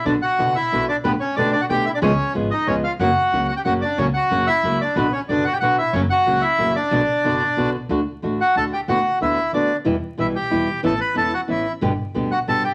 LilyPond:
<<
  \new Staff \with { instrumentName = "Bandoneon" } { \time 3/4 \key b \minor \tempo 4 = 184 <d' d''>8 <fis' fis''>4 <e' e''>4 <d' d''>8 | <b b'>8 <cis' cis''>8 <d' d''>8 <d' d''>16 <fis' fis''>16 <g' g''>8 <e' e''>16 <d' d''>16 | <cis' cis''>4 r8 <dis' dis''>8 <cis' cis''>8 <eis' eis''>8 | <fis' fis''>4. <fis' fis''>16 <g' g''>16 <fis' fis''>8 <d' d''>8 |
<cis' cis''>8 <fis' fis''>4 <e' e''>4 <d' d''>8 | <b b'>8 <cis' cis''>8 <d' d''>8 <fis' fis''>16 <g' g''>16 <fis' fis''>8 <e' e''>8 | <cis' cis''>8 <fis' fis''>4 <e' e''>4 <d' d''>8~ | <d' d''>2~ <d' d''>8 r8 |
\key d \major r4. <fis' fis''>8 <a' a''>8 <g' g''>8 | <fis' fis''>4 <e' e''>4 <d' d''>8. r16 | r4 <e' e''>8 <g' g''>4. | <a' a''>8 <b' b''>8 <a' a''>8 <fis' fis''>8 <e' e''>8. r16 |
r4. <fis' fis''>8 <a' a''>8 <g' g''>8 | }
  \new Staff \with { instrumentName = "Nylon-string guitar" } { \time 3/4 \key b \minor <b, d b d' fis'>8 r8 <b, d b d' fis'>8 r8 <b, d b d' fis'>8 r8 | <b, d a b g'>8 r8 <b, d a b g'>8 r8 <b, d a b g'>8 r8 | <cis eis gis b gis'>8 r8 <cis eis gis b gis'>8 r8 <cis eis gis b gis'>8 r8 | <cis fis ais cis' fis'>8 r8 <cis fis ais cis' fis'>8 r8 <cis fis ais cis' fis'>8 r8 |
<cis fis ais cis' fis'>8 r8 <cis fis ais cis' fis'>8 r8 <cis fis ais cis' fis'>8 r8 | <b, d b d' fis'>8 r8 <b, d b d' fis'>8 r8 <b, d b d' fis'>8 r8 | <cis fis ais cis' fis'>8 r8 <cis fis ais cis' fis'>8 r8 <cis fis ais cis' fis'>8 r8 | <b, d b d' fis'>8 r8 <b, d b d' fis'>8 r8 <b, d b d' fis'>8 r8 |
\key d \major <d a d' fis'>8 r8 <d a d' fis'>8 r8 <d a d' fis'>8 r8 | <d b d' fis'>8 r8 <d b d' fis'>8 r8 <d b d' fis'>8 r8 | <b, e g b e'>8 r8 <b, e g b e'>8 r8 <b, e g b e'>8 r8 | <e b cis' e'>8 r8 <e b cis' e'>8 r8 <e b cis' e'>8 r8 |
<b, d g b g'>8 r8 <b, d g b g'>8 r8 <b, d g b g'>8 r8 | }
  \new Staff \with { instrumentName = "Upright bass" } { \clef bass \time 3/4 \key b \minor b,,8 r8 fis,,8 r8 b,,8 r8 | b,,8 r8 b,,8 r8 b,,8 r8 | cis,8 r8 gis,,8 r8 cis,8 r8 | fis,,8 r8 cis,8 r8 fis,,8 r8 |
cis,8 r8 fis,,8 r8 cis,8 r8 | b,,8 r8 fis,,8 r8 b,,8 r8 | fis,,8 r8 cis,8 r8 fis,,8 r8 | b,,8 r8 fis,,8 r8 b,,8 r8 |
\key d \major d,8 r8 a,,8 r8 d,8 r8 | d,8 r8 d,8 r8 d,8 r8 | e,8 r8 b,,8 r8 e,8 r8 | a,,8 r8 e,,8 r8 a,,8 r8 |
g,,8 r8 d,8 r8 g,,8 r8 | }
>>